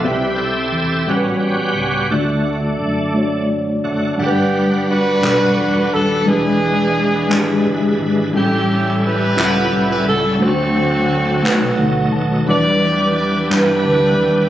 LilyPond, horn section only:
\new Staff \with { instrumentName = "Horn section" } { \time 6/8 \key g \major \tempo 4. = 58 << { r2. | r2. | g'4 b'4~ b'16 b'16 a'8 | gis'2~ gis'8 r8 |
g'4 b'4~ b'16 b'16 a'8 | fis'2~ fis'8 r8 | d''4 d''8 b'4. | } \\ { r2. | r2. | <b d'>4 <d' fis'>4. r8 | <b d'>2~ <b d'>8 r8 |
<cis' e'>4 <e' g'>4. r8 | <a c'>2~ <a c'>8 r8 | <g' b'>4. <d' g'>4. | } >> }